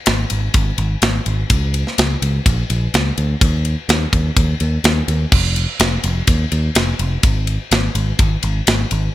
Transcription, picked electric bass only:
0.07 0.24 G#1 loud
0.31 0.48 G#1 medium
0.54 0.71 G#1 medium
0.78 0.95 G#1 medium
1.02 1.19 G#1 medium
1.26 1.43 G#1 medium
1.50 1.83 C#2 medium
1.99 2.15 C#2 loud
2.22 2.38 C#2 medium
2.46 2.62 A#1 medium
2.70 2.86 A#1 medium
2.94 3.10 C#2 medium
3.18 3.34 D2 medium
3.42 3.74 D#2 medium
3.89 4.05 D#2 medium
4.13 4.29 D#2 medium
4.37 4.53 D#2 medium
4.61 4.77 D#2 medium
4.84 5.01 D#2 medium
5.08 5.25 D#2 medium
5.32 5.65 F1 medium
5.80 5.96 F1 medium
6.04 6.21 F1 medium
6.28 6.44 D#2 medium
6.52 6.68 D#2 medium
6.76 6.92 F1 medium
6.99 7.16 F1 medium
7.24 7.57 G#1 medium
7.72 7.88 G#1 loud
7.95 8.12 G#1 medium
8.19 8.36 G#1 medium
8.43 8.60 G#1 medium
8.68 8.84 G#1 medium
8.92 9.08 G#1 medium

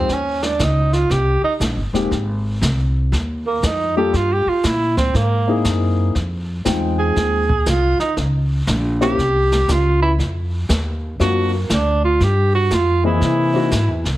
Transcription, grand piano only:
1.94 2.09 G#3 medium
1.94 2.10 A#3 medium
1.94 2.10 C4 medium
1.94 2.10 D#4 medium
1.94 2.10 G4 medium
3.96 4.11 G3 medium
3.96 4.12 A#3 medium
3.96 4.12 D4 medium
3.96 4.12 F4 medium
3.96 4.12 A4 medium
5.47 6.11 A#3 medium
5.47 6.12 C4 medium
5.47 6.12 D#4 medium
5.47 6.12 E4 medium
5.47 6.12 G#4 medium
6.65 7.42 G#3 medium
6.65 7.42 C4 medium
6.65 7.42 D#4 medium
6.65 7.43 F4 medium
6.65 7.43 G5 medium
9.01 9.16 A#3 medium
9.01 9.16 C4 medium
9.01 9.16 C#4 medium
9.01 9.16 E4 medium
9.01 9.17 G4 medium
11.20 11.50 A#3 medium
11.20 11.50 C4 medium
11.20 11.50 D4 medium
11.20 11.50 F4 medium
11.20 11.50 F#4 medium
13.04 13.51 E3 medium
13.04 13.52 A#3 medium
13.04 13.52 C4 medium
13.04 13.52 G#4 medium
13.04 13.52 D#5 medium
13.54 13.70 E3 medium
13.54 13.70 A#3 medium
13.54 13.70 C4 medium
13.54 13.70 D#4 medium
13.54 13.71 F#4 medium

